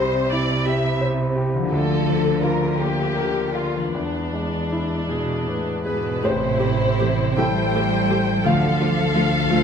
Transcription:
0.00 1.68 C2 soft
0.00 1.28 C3 soft
0.00 1.68 C3 soft
0.00 0.52 G3 soft
0.00 1.32 G3 soft
0.00 0.66 G4 soft
0.00 0.30 C5 medium
0.32 0.87 E4 soft
0.32 0.66 D5 medium
0.65 1.22 G4 soft
0.65 1.00 E5 medium
1.01 1.57 C5 soft
1.35 1.71 G4 soft
1.54 3.88 D3 soft
1.58 3.90 F3 soft
1.62 3.92 A#3 soft
1.67 3.89 D3 soft
1.67 3.95 F4 soft
1.71 3.90 D2 soft
1.71 2.39 A4 medium
2.08 2.65 F3 soft
2.42 3.02 F4 soft
2.42 2.79 A#4 soft
2.79 3.40 A#3 soft
2.79 3.54 G4 medium
3.16 3.78 A#4 soft
3.55 3.94 F4 soft
3.76 6.17 E3 soft
3.80 6.19 G#3 soft
3.85 6.22 B3 soft
3.89 7.79 E4 soft
3.93 4.99 E2 soft
3.93 6.20 E2 soft
3.93 5.82 D4 soft
4.33 4.94 G#3 soft
4.72 5.33 E4 soft
5.09 5.45 B2 soft
5.09 5.70 G#4 soft
5.48 5.86 A2 soft
5.48 5.84 B4 soft
5.85 6.23 G#2 soft
5.85 6.21 B2 soft
5.85 6.20 D4 soft
5.85 6.23 G#4 soft
5.85 6.20 B4 soft
5.85 6.21 B4 soft
6.22 8.41 A1 soft
6.22 7.24 A1 soft
6.22 8.48 A2 soft
6.22 7.37 C3 soft
6.22 6.31 A3 soft
6.22 7.37 E4 medium
6.22 6.31 G4 soft
6.22 7.38 C5 soft
6.22 7.34 C5 soft
6.60 6.68 A3 soft
6.60 7.73 A3 soft
6.60 6.68 G4 soft
6.99 8.48 E3 soft
6.99 7.08 A3 soft
6.99 7.08 G4 soft
7.37 8.33 A1 soft
7.37 8.46 G3 medium
7.37 8.08 G3 soft
7.37 8.41 A3 soft
7.37 7.45 A3 soft
7.37 8.41 E4 soft
7.37 7.45 G4 soft
7.37 8.45 C5 medium
7.37 8.46 G5 soft
7.37 8.42 G5 medium
7.74 7.82 A3 soft
7.74 9.50 A3 soft
7.74 7.82 G4 soft
8.09 8.48 G3 soft
8.09 8.18 A3 soft
8.09 8.18 G4 soft
8.44 9.63 D2 soft
8.44 9.38 D2 medium
8.44 9.63 D3 soft
8.44 9.63 F3 medium
8.44 8.53 A3 soft
8.44 8.53 F4 soft
8.44 9.63 A4 medium
8.44 9.63 F5 medium
8.80 8.88 A3 soft
8.80 9.63 D4 soft
8.80 8.88 F4 soft
9.15 9.63 F3 soft
9.15 9.23 A3 soft
9.15 9.23 F4 soft
9.49 9.63 D2 medium
9.49 9.63 F3 soft
9.49 9.57 A3 soft
9.49 9.63 A3 soft
9.49 9.58 F4 soft

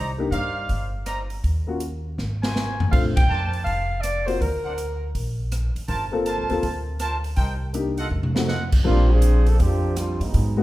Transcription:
0.00 0.30 C2 medium
0.00 0.11 D#4 medium
0.00 0.11 C5 medium
0.00 0.11 D5 medium
0.00 0.11 A#5 medium
0.18 0.30 A#3 medium
0.18 0.30 D4 medium
0.18 0.31 D#4 medium
0.18 0.31 G4 medium
0.31 0.66 G2 medium
0.31 0.88 D#4 medium
0.31 0.88 C5 medium
0.31 0.88 D5 medium
0.31 0.88 F5 medium
0.31 closed hi-hat soft
0.69 1.40 G1 medium
0.69 kick soft
0.69 open hi-hat soft
1.06 1.22 D#4 medium
1.06 1.22 C5 medium
1.06 1.22 D5 medium
1.06 1.22 A#5 medium
1.06 cross-stick medium
1.06 closed hi-hat soft
1.30 open hi-hat soft
1.44 2.14 D#2 medium
1.44 kick soft
1.44 open hi-hat soft
1.67 1.79 A#3 soft
1.67 1.79 C#4 soft
1.67 1.79 F4 soft
1.67 1.80 F#4 medium
1.80 closed hi-hat soft
2.18 2.88 G#1 medium
2.18 snare soft
2.42 2.89 F#4 medium
2.42 2.89 A#4 medium
2.42 2.89 C5 medium
2.42 2.89 G#5 medium
2.42 snare medium
2.56 snare medium
2.80 floor tom medium
2.92 3.27 A#1 medium
2.92 3.14 A3 medium
2.92 3.14 C4 medium
2.92 3.14 D4 medium
2.92 3.14 F4 medium
2.92 3.03 F5 medium
2.92 kick medium
2.92 crash medium
3.16 3.51 G5 medium
3.16 kick medium
3.16 ride medium
3.29 3.63 F2 medium
3.29 3.86 D4 medium
3.29 3.86 A#4 medium
3.29 3.86 C5 medium
3.29 3.86 A5 medium
3.53 open hi-hat soft
3.64 4.37 F1 medium
3.64 3.99 F5 medium
3.64 kick soft
3.64 open hi-hat soft
4.01 4.26 D5 medium
4.01 cross-stick medium
4.01 closed hi-hat medium
4.26 4.38 A#3 medium
4.26 4.39 C4 soft
4.26 4.39 F4 soft
4.26 4.39 F#4 medium
4.26 4.40 C5 medium
4.26 open hi-hat soft
4.41 5.11 D2 medium
4.41 5.15 A#4 medium
4.41 kick soft
4.41 open hi-hat soft
4.64 4.73 D4 medium
4.64 4.73 A#4 medium
4.64 4.73 C5 medium
4.64 4.73 F#5 medium
4.78 closed hi-hat soft
5.15 5.72 A#1 medium
5.15 kick soft
5.15 open hi-hat soft
5.52 cross-stick medium
5.52 closed hi-hat soft
5.75 muted upright bass stroke soft
5.75 open hi-hat soft
5.88 6.35 G1 medium
5.88 6.05 F4 medium
5.88 6.05 A#4 medium
5.88 6.05 C5 medium
5.88 6.05 A5 medium
5.88 kick soft
5.88 open hi-hat soft
6.12 6.47 A#3 medium
6.12 6.48 C4 medium
6.12 6.48 F4 medium
6.12 6.48 A4 medium
6.26 6.82 F4 medium
6.26 6.83 A#4 medium
6.26 6.83 C5 medium
6.26 6.83 A5 medium
6.26 closed hi-hat soft
6.38 6.50 C2 medium
6.49 6.62 D2 medium
6.49 6.61 A#3 medium
6.49 6.62 C4 medium
6.49 6.62 F4 medium
6.49 6.62 A4 medium
6.49 open hi-hat soft
6.63 7.34 D2 medium
6.63 kick soft
6.63 open hi-hat soft
6.99 7.17 F4 medium
6.99 7.17 A#4 medium
6.99 7.16 C5 medium
6.99 7.16 A5 medium
6.99 cross-stick medium
6.99 closed hi-hat medium
7.24 open hi-hat soft
7.36 8.08 C2 medium
7.36 7.53 D#4 medium
7.36 7.53 A#4 medium
7.36 7.53 C5 medium
7.36 7.53 G5 medium
7.36 kick soft
7.36 open hi-hat soft
7.73 7.96 A#3 medium
7.73 7.96 D4 soft
7.73 7.96 D#4 soft
7.73 7.96 G4 medium
7.73 closed hi-hat soft
7.97 8.07 F4 medium
7.97 8.07 A4 medium
7.97 8.07 D#5 medium
7.97 8.07 F#5 medium
7.97 open hi-hat soft
8.11 8.82 F2 medium
8.11 mid tom soft
8.23 mid tom medium
8.34 8.47 A3 medium
8.34 8.47 C4 medium
8.34 8.47 D#4 soft
8.34 8.47 F#4 medium
8.34 snare medium
8.48 8.64 F4 medium
8.48 8.64 A4 medium
8.48 8.65 D#5 medium
8.48 8.65 F#5 medium
8.48 snare soft
8.72 kick medium
8.72 crash medium
8.84 9.56 A#1 medium
8.84 9.88 F3 medium
8.84 9.08 G3 medium
8.84 9.88 A#3 medium
8.84 9.88 C4 medium
8.84 9.08 C4 medium
8.84 9.89 D4 medium
8.84 9.09 D4 medium
8.84 9.89 F4 medium
8.84 9.08 F4 loud
8.84 kick soft
9.11 9.47 F3 medium
9.11 9.48 C4 medium
9.11 9.47 D4 medium
9.11 9.48 G#4 loud
9.22 closed hi-hat medium
9.46 9.60 F3 medium
9.46 9.61 A#3 medium
9.46 9.60 D4 medium
9.46 9.61 A4 medium
9.46 open hi-hat soft
9.60 10.17 F2 medium
9.60 9.97 F3 medium
9.60 9.96 C4 medium
9.60 9.95 D4 medium
9.60 9.98 G4 medium
9.60 kick soft
9.60 open hi-hat soft
9.96 10.21 G3 medium
9.96 10.21 C4 medium
9.96 10.21 D4 medium
9.96 10.21 F4 medium
9.96 cross-stick medium
9.96 closed hi-hat medium
10.20 10.33 G2 medium
10.20 10.59 F#3 medium
10.20 10.59 G#3 medium
10.20 10.59 B3 medium
10.20 10.59 D#4 medium
10.20 open hi-hat soft
10.34 10.63 G#2 medium
10.34 kick soft
10.34 open hi-hat soft
10.57 10.63 G#3 medium
10.57 10.63 A#3 medium
10.57 10.63 B3 medium
10.57 10.63 D#4 medium
10.57 10.63 F#4 medium

